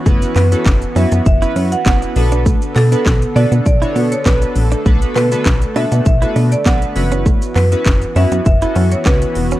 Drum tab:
HH |-xox-xox-xox-xox|-xox-xox-xox-xox|-xox-xox-xox-xox|-xox-xox-xox-xox|
SH |xxxxxxxxxxxxxxxx|xxxxxxxxxxxxxxxx|xxxxxxxxxxxxxxxx|xxxxxxxxxxxxxxxx|
CP |--x-x-------x---|--x-x-------x---|--x-x-------x---|--x-x-------x---|
SD |----o-------o---|----o-------o---|----o-------o---|----o-------o---|
BD |o---o---o---o---|o---o---o---o---|o---o---o---o---|o---o---o---o---|